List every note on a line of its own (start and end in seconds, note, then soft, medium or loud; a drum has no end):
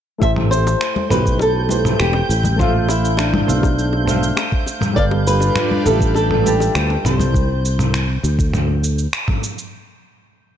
0.18 0.74 A1 medium
0.18 1.06 A3 medium
0.18 1.06 E4 medium
0.18 1.07 G4 medium
0.18 0.30 E5 loud
0.18 7.35 G6 medium
0.18 kick loud
0.18 high bongo medium
0.22 1.08 A4 medium
0.22 1.09 C5 medium
0.22 cabasa soft
0.36 mid tom medium
0.51 1.10 C5 medium
0.51 cabasa medium
0.67 high bongo medium
0.67 cabasa soft
0.81 finger snap loud
0.81 cabasa soft
0.96 high bongo soft
0.96 high conga medium
1.09 1.93 B1 medium
1.09 1.66 A3 medium
1.09 1.66 E4 medium
1.09 1.67 G4 medium
1.09 1.39 B4 medium
1.09 1.67 B4 medium
1.09 1.67 C5 medium
1.09 mid tom medium
1.09 low conga medium
1.09 cabasa medium
1.26 kick medium
1.26 cabasa soft
1.39 2.00 A4 medium
1.39 high bongo medium
1.39 cabasa soft
1.69 2.27 A3 medium
1.69 2.27 E4 medium
1.69 2.28 G4 medium
1.69 2.28 B4 medium
1.69 2.28 C5 medium
1.69 high bongo soft
1.69 high conga medium
1.69 cabasa medium
1.85 mid tom medium
1.85 cabasa soft
2.00 2.21 E1 medium
2.00 2.59 G4 medium
2.00 finger snap loud
2.00 cabasa soft
2.13 high bongo medium
2.29 3.41 A1 medium
2.29 cabasa medium
2.43 high bongo soft
2.43 high conga medium
2.43 low conga medium
2.43 cabasa soft
2.56 3.43 A3 medium
2.56 2.90 F4 medium
2.56 3.44 A4 medium
2.56 3.45 C5 medium
2.56 kick loud
2.56 mid tom medium
2.60 3.45 E5 medium
2.60 3.46 F5 medium
2.60 cabasa soft
2.89 3.17 E4 medium
2.89 high bongo medium
2.89 cabasa medium
3.05 cabasa soft
3.17 4.33 D4 medium
3.17 finger snap medium
3.17 high bongo medium
3.17 cabasa soft
3.34 mid tom medium
3.34 high conga loud
3.46 4.30 B1 medium
3.46 4.03 A3 medium
3.46 4.04 A4 medium
3.46 4.04 C5 medium
3.46 4.04 E5 medium
3.46 4.05 F5 medium
3.46 low conga medium
3.46 cabasa medium
3.63 kick loud
3.63 high bongo medium
3.63 cabasa soft
3.79 cabasa soft
3.93 high bongo medium
4.04 4.92 A3 medium
4.04 4.92 A4 medium
4.04 4.93 C5 medium
4.04 mid tom medium
4.04 high conga medium
4.08 4.94 E5 medium
4.08 4.95 F5 medium
4.08 cabasa medium
4.23 cabasa soft
4.37 finger snap loud
4.37 high bongo medium
4.37 cabasa soft
4.52 kick loud
4.66 high bongo soft
4.66 cabasa medium
4.81 mid tom medium
4.81 high conga loud
4.81 cabasa soft
4.93 5.49 G1 loud
4.93 5.81 G3 medium
4.93 5.81 G4 medium
4.93 5.82 A4 medium
4.93 5.04 D5 loud
4.93 kick loud
4.93 cabasa soft
4.97 7.33 G3 medium
4.97 7.33 D4 medium
4.97 7.32 F4 medium
4.97 5.83 B4 medium
4.97 7.33 B4 medium
4.97 5.84 F5 medium
5.11 high bongo medium
5.27 5.86 B4 medium
5.27 cabasa medium
5.40 high bongo medium
5.40 cabasa soft
5.56 finger snap loud
5.56 mid tom medium
5.56 cabasa soft
5.71 high conga medium
5.84 6.68 A1 medium
5.84 6.41 G3 medium
5.84 6.41 G4 medium
5.84 6.42 A4 medium
5.84 6.14 A4 medium
5.84 6.42 B4 medium
5.84 6.42 E5 medium
5.84 high bongo medium
5.84 low conga medium
5.84 cabasa medium
6.01 kick medium
6.01 cabasa soft
6.15 6.46 A4 medium
6.15 high bongo medium
6.15 cabasa soft
6.31 mid tom medium
6.42 7.29 G3 medium
6.42 7.30 G4 medium
6.42 7.07 G4 medium
6.42 7.31 A4 medium
6.46 7.32 B4 medium
6.46 7.32 A5 medium
6.46 high conga medium
6.46 cabasa medium
6.60 high bongo medium
6.60 cabasa soft
6.75 6.96 D2 medium
6.75 finger snap medium
6.75 cabasa soft
6.90 high bongo medium
7.05 8.16 C2 medium
7.05 9.09 C5 medium
7.05 mid tom medium
7.05 cabasa medium
7.19 high conga medium
7.19 low conga medium
7.19 cabasa soft
7.34 kick loud
7.34 cabasa soft
7.65 cabasa medium
7.79 mid tom medium
7.79 cabasa soft
7.94 finger snap medium
7.94 cabasa soft
8.23 9.05 D2 medium
8.23 cabasa medium
8.39 kick loud
8.39 cabasa soft
8.54 mid tom medium
8.54 cabasa soft
8.84 cabasa medium
8.99 cabasa soft
9.13 finger snap medium
9.13 cabasa soft
9.28 kick loud
9.28 mid tom medium
9.43 cabasa medium
9.58 cabasa soft